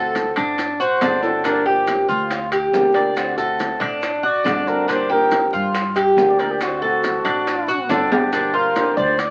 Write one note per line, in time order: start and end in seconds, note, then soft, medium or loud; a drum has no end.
0.00 0.31 D2 loud
0.00 0.58 A3 medium
0.00 0.58 C4 medium
0.00 0.58 F#4 medium
0.00 0.36 A4 medium
0.15 high bongo medium
0.15 high timbale medium
0.15 low timbale medium
0.15 maracas medium
0.36 0.97 A1 medium
0.36 0.79 D4 medium
0.36 high bongo soft
0.36 high timbale medium
0.36 maracas soft
0.58 muted steel-string acoustic guitar stroke medium
0.58 high bongo medium
0.58 high timbale medium
0.58 maracas medium
0.80 1.01 F#4 medium
0.80 1.20 C5 loud
0.80 maracas medium
1.01 2.03 G1 medium
1.01 1.22 D3 medium
1.01 1.23 A3 medium
1.01 1.23 C4 medium
1.01 1.43 D4 medium
1.01 1.22 F#4 medium
1.01 high bongo medium
1.01 low bongo medium
1.01 high timbale medium
1.01 low timbale medium
1.01 maracas medium
1.23 1.45 A3 medium
1.23 1.44 C4 medium
1.23 1.44 F#4 medium
1.23 1.47 A4 medium
1.23 high bongo soft
1.23 high timbale medium
1.23 maracas soft
1.44 1.66 D3 medium
1.44 1.66 F3 medium
1.44 1.66 A#3 medium
1.44 1.66 D4 medium
1.44 1.65 D4 medium
1.44 1.65 G4 medium
1.44 1.68 A#4 medium
1.44 high bongo medium
1.44 high timbale medium
1.44 maracas medium
1.66 2.30 F3 medium
1.66 2.31 A#3 medium
1.66 2.31 D4 medium
1.66 2.08 G4 medium
1.66 2.30 G4 medium
1.66 2.09 G4 medium
1.87 high bongo medium
1.87 high timbale loud
1.87 low timbale medium
1.87 maracas medium
2.09 2.70 D2 loud
2.09 2.51 F4 medium
2.09 maracas soft
2.31 muted steel-string acoustic guitar stroke medium
2.31 high bongo medium
2.31 high timbale medium
2.31 maracas medium
2.52 2.94 G4 medium
2.52 high timbale medium
2.52 maracas medium
2.73 3.75 D2 medium
2.73 2.94 F3 medium
2.73 2.94 A#3 medium
2.73 2.94 D4 medium
2.73 2.93 G4 medium
2.73 high bongo medium
2.73 low bongo medium
2.73 low timbale medium
2.73 maracas medium
2.94 3.15 F3 medium
2.94 3.16 A#3 medium
2.94 3.16 D4 medium
2.94 3.15 G4 medium
2.94 3.37 D5 medium
2.94 high timbale medium
2.94 maracas soft
3.15 3.37 D3 medium
3.15 3.37 A3 medium
3.15 3.37 C4 medium
3.15 3.36 F#4 medium
3.15 high bongo medium
3.15 high timbale medium
3.15 maracas medium
3.37 4.02 A3 medium
3.37 4.02 C4 medium
3.37 4.01 F#4 medium
3.37 3.80 A4 medium
3.37 high bongo soft
3.37 maracas medium
3.59 high bongo medium
3.59 high timbale medium
3.59 low timbale medium
3.59 maracas medium
3.80 4.41 A1 medium
3.80 4.22 D4 medium
3.80 high bongo soft
3.80 high timbale medium
3.80 maracas soft
4.02 muted steel-string acoustic guitar stroke medium
4.02 high bongo medium
4.02 high timbale medium
4.02 maracas medium
4.23 4.45 F#4 medium
4.23 4.69 D5 loud
4.44 5.47 G1 medium
4.44 4.66 D3 medium
4.44 4.67 A3 medium
4.44 4.67 C4 medium
4.44 4.87 D4 medium
4.44 4.65 F#4 medium
4.44 high bongo medium
4.44 low bongo medium
4.44 high timbale medium
4.44 low timbale medium
4.44 maracas medium
4.66 4.89 A3 medium
4.66 4.88 C4 medium
4.66 4.87 F#4 medium
4.66 4.91 A#4 loud
4.66 high bongo soft
4.66 maracas soft
4.88 5.09 D3 medium
4.88 5.10 F3 medium
4.88 5.10 A#3 medium
4.88 5.09 D4 medium
4.88 5.10 D4 medium
4.88 5.09 G4 medium
4.88 5.10 C5 medium
4.88 high bongo medium
4.88 high timbale medium
4.88 maracas medium
5.10 5.73 F3 medium
5.10 5.73 A#3 medium
5.10 5.74 D4 medium
5.10 5.52 G4 medium
5.10 5.74 G4 medium
5.10 5.51 A#4 medium
5.31 high bongo medium
5.31 high timbale loud
5.31 low timbale medium
5.31 maracas medium
5.53 6.14 G2 medium
5.53 5.95 F4 medium
5.53 maracas soft
5.74 muted steel-string acoustic guitar stroke medium
5.74 high bongo medium
5.74 high timbale medium
5.74 maracas medium
5.96 6.38 G4 medium
5.96 high timbale medium
5.96 maracas medium
6.17 7.19 D2 loud
6.17 6.38 F3 medium
6.17 6.39 A#3 medium
6.17 6.39 D4 medium
6.17 6.38 G4 medium
6.17 high bongo medium
6.17 low bongo medium
6.17 low timbale medium
6.17 maracas medium
6.29 6.42 D5 medium
6.39 6.60 F3 medium
6.39 6.61 A#3 medium
6.39 6.60 D4 medium
6.39 6.60 G4 medium
6.39 6.52 A#4 medium
6.39 6.81 D5 medium
6.39 high timbale medium
6.39 maracas soft
6.51 6.61 G4 medium
6.60 6.81 D3 medium
6.60 6.82 A3 medium
6.60 6.82 C4 medium
6.60 6.80 F#4 medium
6.60 7.87 F#4 medium
6.60 high bongo medium
6.60 high timbale medium
6.60 maracas medium
6.82 7.46 A3 medium
6.82 7.46 C4 medium
6.82 7.46 F#4 medium
6.82 7.24 A4 medium
6.82 high bongo soft
7.04 high bongo medium
7.04 high timbale medium
7.04 low timbale medium
7.04 maracas medium
7.25 7.86 A1 medium
7.25 7.67 D4 medium
7.25 high bongo soft
7.25 high timbale loud
7.25 maracas soft
7.47 muted steel-string acoustic guitar stroke medium
7.47 high bongo medium
7.47 high timbale medium
7.47 maracas medium
7.68 7.89 F#4 medium
7.68 maracas medium
7.89 8.91 G1 medium
7.89 8.10 D3 medium
7.89 8.11 A3 medium
7.89 8.11 C4 medium
7.89 8.31 D4 medium
7.89 8.11 F#4 medium
7.89 8.10 A4 medium
7.89 high bongo medium
7.89 low bongo medium
7.89 high timbale medium
7.89 maracas medium
8.12 8.33 A3 medium
8.12 8.33 C4 medium
8.12 8.32 F#4 medium
8.12 8.56 G4 medium
8.12 high bongo soft
8.12 low timbale loud
8.12 maracas soft
8.33 8.75 D3 medium
8.33 8.75 F3 medium
8.33 8.76 A#3 medium
8.33 8.54 D4 medium
8.33 8.76 D4 medium
8.33 8.76 G4 medium
8.33 high bongo medium
8.33 high timbale medium
8.33 maracas medium
8.54 8.96 F4 medium
8.54 8.97 A#4 loud
8.76 9.17 D3 medium
8.76 9.17 F3 medium
8.76 9.18 A#3 medium
8.76 9.18 D4 medium
8.76 9.18 G4 medium
8.76 high bongo medium
8.76 high timbale medium
8.76 low timbale medium
8.76 maracas medium
8.97 9.30 D2 loud
8.97 9.21 C5 loud
8.97 9.30 D5 medium
8.97 maracas soft
9.18 9.30 D5 loud
9.18 muted steel-string acoustic guitar stroke medium
9.18 high bongo medium
9.18 high timbale medium
9.18 maracas medium